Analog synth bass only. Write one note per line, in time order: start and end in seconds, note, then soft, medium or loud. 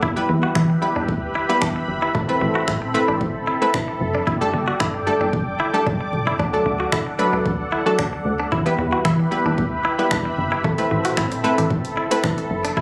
0.03 0.23 E2 loud
0.29 0.50 E2 loud
0.56 0.76 E3 loud
0.96 1.06 E2 medium
1.08 1.29 D2 medium
1.62 1.83 E2 medium
1.88 2.09 G1 medium
2.15 2.36 A1 loud
2.41 2.62 A1 loud
2.68 2.89 A2 loud
3.09 3.18 A1 medium
3.21 3.42 A1 medium
3.74 3.95 A1 medium
4.01 4.21 F#1 medium
4.27 4.48 G1 loud
4.54 4.74 G1 medium
4.80 5.01 G2 loud
5.21 5.31 G1 medium
5.33 5.54 F#1 medium
5.87 6.14 G1 medium
6.13 6.34 C#2 loud
6.40 6.60 D2 loud
6.66 6.87 D2 medium
6.93 7.14 D3 loud
7.33 7.43 D2 medium
7.46 7.67 D2 medium
7.99 8.20 D2 medium
8.25 8.46 D2 medium
8.52 8.73 E2 loud
8.78 8.99 E2 medium
9.05 9.26 E3 loud
9.46 9.55 E2 medium
9.58 9.79 D2 medium
10.11 10.32 E2 medium
10.38 10.59 G1 medium
10.64 10.85 A1 loud
10.91 11.12 A1 medium
11.18 11.38 A2 medium
11.58 11.68 A1 medium
11.71 11.91 A1 medium
12.24 12.45 A1 medium
12.50 12.71 F#1 medium
12.77 12.81 G1 loud